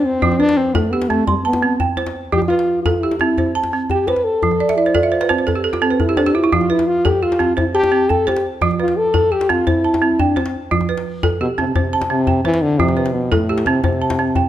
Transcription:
Already playing: balafon C5 G5
0.05 french horn C4
0.22 balafon F3 F4, djembe bass
0.32 djembe tone
0.39 french horn D4, balafon B4
0.49 djembe slap
0.57 french horn C4
0.74 french horn A3, balafon A4, djembe slap, djembe tone, djembe bass
0.91 french horn B3, balafon G4
1.02 djembe slap
1.09 french horn A3, balafon C4, djembe slap, djembe tone
1.19 djembe slap
1.27 french horn G3, balafon C6, djembe slap, djembe bass
1.45 french horn B3, balafon A5
1.53 djembe slap, djembe tone
1.63 balafon C4
1.80 balafon G5, djembe slap, djembe bass
1.97 balafon C5, djembe tone
2.06 djembe slap
2.32 balafon F3 F4, french horn G4, djembe bass
2.42 djembe slap, djembe tone
2.48 french horn F4, balafon B4, djembe slap
2.59 djembe slap
2.83 french horn F4, balafon A4, djembe tone, djembe bass
3.01 french horn E4, balafon G4
3.11 djembe slap
3.18 balafon C4, french horn E4, djembe tone
3.29 djembe slap
3.38 balafon C5, djembe slap, djembe bass
3.46 djembe slap
3.55 balafon A5
3.63 djembe slap, djembe tone
3.73 balafon C4
3.81 djembe slap
3.90 french horn G4, balafon G5, djembe slap, djembe bass
4.07 french horn B4, balafon C5, djembe tone
4.16 djembe slap
4.24 french horn A4
4.43 balafon F3, djembe bass
4.51 djembe slap, djembe tone
4.60 balafon D5, djembe slap
4.69 balafon E5, djembe slap
4.77 french horn E4, balafon D5
4.86 balafon C5
4.95 french horn F4, balafon A4 D5, djembe tone, djembe bass
5.03 balafon E5
5.12 balafon C5
5.21 balafon B4, djembe slap
5.29 balafon C4 C5, djembe tone
5.38 balafon C5, djembe slap
5.47 balafon A4, djembe slap, djembe bass
5.56 balafon G4, djembe slap
5.64 balafon A4
5.73 balafon F4, djembe slap, djembe tone
5.82 balafon C4 A4, french horn C4
5.90 balafon B4
6.00 french horn E4, balafon A4, djembe slap, djembe bass
6.09 balafon G4
6.17 french horn D4, balafon A4 C5, djembe tone
6.26 balafon G4, djembe slap
6.35 french horn E4, balafon F4
6.44 balafon E4
6.52 balafon F3 F4, french horn F4, djembe bass
6.61 djembe slap, djembe tone
6.70 french horn E4, balafon B4, djembe slap
6.79 djembe slap
6.87 french horn F4
7.05 french horn G4, balafon A4, djembe tone, djembe bass
7.23 french horn F4, balafon G4
7.32 djembe slap
7.39 balafon C4, djembe tone
7.57 french horn E4, balafon C5, djembe slap, djembe bass
7.66 djembe slap
7.74 french horn G4, balafon A5
7.84 djembe slap, djembe tone
7.92 balafon C4
8.01 djembe slap
8.09 french horn A4, balafon G5, djembe slap, djembe bass
8.27 french horn G4, balafon C5, djembe tone
8.36 djembe slap
8.61 balafon F3 F4, djembe slap, djembe bass
8.71 djembe tone
8.80 french horn F4, balafon B4
8.88 djembe slap
8.97 french horn A4
9.06 djembe slap
9.14 balafon A4, djembe slap, djembe tone, djembe bass
9.32 balafon G4, french horn G4
9.41 djembe slap
9.49 balafon C4, french horn F4, djembe slap, djembe tone
9.59 djembe slap
9.67 french horn E4, balafon C5, djembe slap, djembe bass
9.85 balafon A5, djembe slap
9.94 djembe slap, djembe tone
10.02 balafon C4
10.11 djembe slap
10.20 french horn D4, balafon G5, djembe slap, djembe bass
10.36 french horn C4, balafon C5, djembe slap, djembe tone
10.46 djembe slap
10.71 balafon F3 F4, djembe bass
10.81 djembe slap, djembe tone
10.89 balafon B4, djembe slap
10.97 djembe slap
11.23 balafon A4, djembe tone, djembe bass
11.40 french horn B2, balafon G4
11.58 french horn C3, balafon C4, djembe tone
11.67 french horn C3, djembe slap
11.74 french horn C3, balafon C5, djembe slap, djembe bass
11.82 french horn C3, djembe slap
11.89 french horn C3, balafon A5
11.96 french horn C3
12.01 djembe slap, djembe tone
12.10 french horn C3, balafon C4
12.19 djembe slap
12.27 balafon G5, djembe slap, djembe bass
12.45 french horn E3, balafon C5, djembe tone
12.54 djembe slap
12.62 french horn D3
12.79 french horn C3, balafon F3 F4, djembe bass
12.88 djembe slap, djembe tone
12.97 balafon B4, djembe slap
13.06 djembe slap
13.13 french horn B2
13.32 french horn A2, balafon A4, djembe tone, djembe bass
13.49 balafon G4
13.58 djembe slap
13.66 french horn C3, balafon C4, djembe tone
13.75 djembe slap
13.84 french horn C3, balafon C5, djembe slap, djembe bass
13.93 djembe slap
14.02 balafon A5
14.10 djembe slap, djembe tone
14.19 balafon C4
14.27 djembe slap
14.35 balafon G5, djembe slap, djembe bass

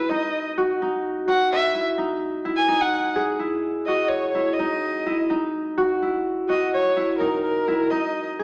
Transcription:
Already playing: harp E4 F#4 G#4, violin B4
0.09 harp D#4, violin D#5
0.58 harp F#4
0.82 harp D#4
1.28 harp F#4, violin F#5
1.52 violin E5
1.75 harp E4
1.98 harp D#4
2.45 harp E4
2.57 violin G#5
2.68 harp D#4
2.81 violin F#5
3.16 harp G#4
3.39 harp E4
3.87 harp F#4, violin D#5
4.08 violin C#5
4.30 violin C#5
4.35 harp E4
4.53 violin D#5
4.59 harp D#4
5.06 harp E4
5.30 harp D#4
5.78 harp F#4
6.02 harp E4
6.49 harp F#4, violin D#5
6.74 violin C#5
6.97 harp E4
7.18 harp D#4, violin A#4
7.43 violin A#4
7.68 harp E4
7.91 harp D#4, violin D#5
8.39 harp G#4

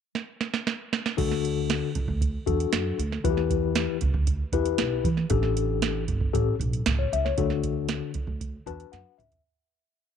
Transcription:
0.15 snare
0.41 snare
0.54 snare
0.67 snare
0.93 snare
1.06 snare
1.17 upright bass D2, tine electric piano D3 D4 F#4 A4, kick, crash
1.32 snare
1.45 closed hi-hat
1.70 snare, closed hi-hat
1.95 upright bass C#2, kick, closed hi-hat
2.08 upright bass D2, kick
2.21 kick, closed hi-hat
2.46 upright bass E2, tine electric piano D4 F#4 A4, kick, closed hi-hat
2.60 closed hi-hat
2.73 upright bass F#2, snare, closed hi-hat
2.99 upright bass D2, closed hi-hat
3.12 snare
3.24 upright bass E2, tine electric piano E3 E4 F#4 B4, kick, closed hi-hat
3.30 tine electric piano G4
3.37 snare
3.50 kick, closed hi-hat
3.75 snare, closed hi-hat
4.01 upright bass C#2, kick, closed hi-hat
4.14 upright bass D2, kick
4.27 kick, closed hi-hat
4.52 upright bass E2, tine electric piano E4 G4 B4, kick, closed hi-hat
4.65 closed hi-hat
4.78 upright bass B1, snare, closed hi-hat
5.04 upright bass E3, kick, closed hi-hat
5.17 snare
5.30 upright bass A1, tine electric piano A2 D4 G4 A4, kick, closed hi-hat
5.43 snare
5.57 closed hi-hat
5.82 snare, closed hi-hat
6.08 upright bass G1, kick, closed hi-hat
6.21 kick
6.34 upright bass A1, tine electric piano A2 C#4 G4 A4, kick, closed hi-hat
6.59 upright bass B1, kick, closed hi-hat
6.73 closed hi-hat
6.86 upright bass C#2, snare, closed hi-hat
6.99 tine electric piano C#5
7.12 upright bass C#2, tine electric piano E5, closed hi-hat
7.25 tine electric piano C#5, snare
7.38 upright bass D2, tine electric piano D3 D4 F#4 A4, kick, closed hi-hat
7.50 snare
7.63 kick, closed hi-hat
7.89 snare, closed hi-hat
8.14 upright bass C#2, kick, closed hi-hat
8.27 upright bass D2, kick
8.41 kick, closed hi-hat
8.66 upright bass E2, tine electric piano D4 F#4 B4 A5, kick, closed hi-hat
8.80 closed hi-hat
8.92 upright bass F#2, tine electric piano F#5, snare, closed hi-hat
9.18 upright bass C#2, tine electric piano E5, closed hi-hat, mid tom
9.32 closed hi-hat, floor tom

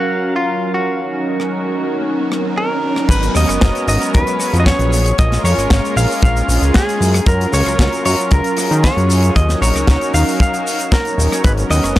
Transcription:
Already playing: analog synth pad F#3 C#4 A#4 F5, string section F#3 A#4 F5, clean electric guitar F#4, riser
0.36 clean electric guitar F4
0.74 clean electric guitar F#4
1.00 string section D#3 C#4 F#4, analog synth pad F#3 C#4 D#4 A#4
1.40 cross-stick
2.32 cross-stick
2.58 clean electric guitar A#4
2.96 cross-stick
3.08 analog synth bass G#1, analog synth pad F#3 B3 C#4 A#4, string section G#3 B3 F#4 C#5 A#5, clean electric guitar B4, kick, closed hi-hat, crash, shaker
3.23 closed hi-hat, shaker
3.35 analog synth bass D#2, clean electric guitar D#5, cross-stick, open hi-hat, shaker
3.49 analog synth bass F#1, cross-stick, closed hi-hat, shaker
3.61 analog synth bass F#1, kick, snare, closed hi-hat, shaker
3.75 closed hi-hat, shaker
3.87 analog synth bass G#1, clean electric guitar D#5, open hi-hat, shaker
4.02 closed hi-hat, shaker
4.14 analog synth bass D#2, clean electric guitar B4, kick, closed hi-hat, shaker
4.27 closed hi-hat, shaker
4.39 analog synth pad F#3 B3 C#4 G#4, cross-stick, open hi-hat, shaker
4.53 analog synth bass F2, closed hi-hat, shaker
4.60 clean electric guitar D#5
4.66 clean electric guitar C#5, kick, snare, closed hi-hat, shaker
4.79 analog synth bass A#1, closed hi-hat, shaker
4.92 string section A#3 G#4, open hi-hat, shaker
5.06 closed hi-hat, shaker
5.17 analog synth bass A#1, analog synth pad G#3 C#4 F4 A#4, clean electric guitar D#5, kick, closed hi-hat, shaker
5.32 snare, closed hi-hat, shaker
5.44 analog synth bass F2, clean electric guitar C#5, cross-stick, open hi-hat, shaker
5.58 analog synth bass G#1, cross-stick, closed hi-hat, shaker
5.70 analog synth bass G#1, kick, snare, closed hi-hat, shaker
5.85 closed hi-hat, shaker
5.96 analog synth bass A#1, clean electric guitar F5, open hi-hat, shaker
6.10 open hi-hat, shaker
6.22 analog synth bass A#1, clean electric guitar F5, kick, closed hi-hat, shaker
6.37 closed hi-hat, shaker
6.48 analog synth bass A#1, analog synth pad G#3 C#4 F4 G#4, open hi-hat, shaker
6.62 analog synth bass C#2, closed hi-hat, shaker
6.74 clean electric guitar G#4, kick, snare, closed hi-hat, shaker
6.89 closed hi-hat, shaker
7.01 analog synth bass F#2, string section F#3 F4 A#4, open hi-hat, shaker
7.14 cross-stick, closed hi-hat, shaker
7.26 analog synth bass F#2, analog synth pad F#3 C#4 F4 A#4, clean electric guitar A#4, kick, closed hi-hat, shaker
7.41 closed hi-hat, shaker
7.53 analog synth bass C#2, clean electric guitar C#5, cross-stick, open hi-hat, shaker
7.66 analog synth bass C#2, cross-stick, closed hi-hat, shaker
7.79 analog synth bass C#2, kick, snare, closed hi-hat, shaker
7.93 closed hi-hat, shaker
8.05 analog synth bass F#2, clean electric guitar C#5, open hi-hat, shaker
8.18 closed hi-hat, shaker
8.31 analog synth bass C#2, clean electric guitar A#4, kick, closed hi-hat, shaker
8.44 closed hi-hat, shaker
8.56 analog synth pad F#3 C#4 F4 G#4, cross-stick, open hi-hat, shaker
8.71 analog synth bass D#3, closed hi-hat, shaker
8.84 clean electric guitar C#5, kick, snare, closed hi-hat, shaker
8.97 analog synth bass F#2, closed hi-hat, shaker
9.10 open hi-hat, shaker
9.23 closed hi-hat, shaker
9.35 analog synth bass D#2, analog synth pad F#3 C#4 D#4 A#4, string section D#4 F#4 C#5, clean electric guitar D#5, kick, closed hi-hat, shaker
9.49 snare, closed hi-hat, shaker
9.62 analog synth bass A#1, clean electric guitar C#5, cross-stick, open hi-hat, shaker
9.75 analog synth bass C#2, cross-stick, closed hi-hat, shaker
9.87 analog synth bass C#2, kick, snare, closed hi-hat, shaker
10.01 closed hi-hat, shaker
10.14 analog synth bass D#2, clean electric guitar F5, open hi-hat, shaker
10.28 open hi-hat, shaker
10.40 clean electric guitar F5, kick, closed hi-hat, shaker
10.54 closed hi-hat, shaker
10.67 open hi-hat, shaker
10.79 closed hi-hat, shaker
10.92 clean electric guitar A#4, kick, snare, closed hi-hat, shaker
11.05 analog synth pad F#3 C#4 D#4 C#5, closed hi-hat, shaker
11.18 analog synth bass D#1, open hi-hat, shaker
11.32 cross-stick, closed hi-hat, shaker
11.43 analog synth bass G#1, analog synth pad F#3 B3 C#4 A#4, string section G#3 B3 F#4 A#5, clean electric guitar B4, kick, closed hi-hat, shaker
11.58 closed hi-hat, shaker
11.70 analog synth bass D#2, clean electric guitar D#5, cross-stick, open hi-hat, shaker
11.84 analog synth bass F#1, cross-stick, closed hi-hat, shaker
11.96 snare

